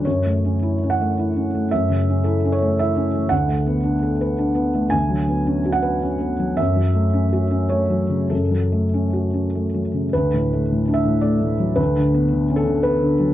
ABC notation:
X:1
M:3/4
L:1/8
Q:1/4=110
K:F#m
V:1 name="Felt piano"
c3 f3 | e2 A c e2 | f6 | g3 f z2 |
e4 c2 | A4- A z | B3 e d2 | B3 A B2 |]
V:2 name="Felt piano"
(3F,, A, C (3E C A, (3E C A, | (3F,, C, C (3E C A, (3E C A, | (3D,, A, B, (3D A B (3D B, A, | (3D,, F, B, (3C F B (3C B, F, |
(3F,, F, A, (3C F C (3A, F, C, | (3F,, F, A, (3C F C (3A, F, C, | (3D,, A,, A, (3A,, D A,, (3A, A,, F, | (3D,, D, B, (3D, C D, (3B, D, F, |]